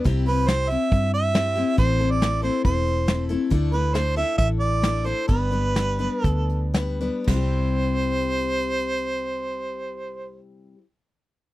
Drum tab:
CC |--------|--------|--------|--------|
HH |xxxxxxxx|xxxxxxxx|xxxxxxxx|xxxxxxxx|
SD |--o---o-|--o---o-|--o---o-|--o---o-|
BD |o---o---|o---o---|o---o---|o---o---|

CC |x-------|--------|
HH |--------|--------|
SD |o-------|--------|
BD |o-------|--------|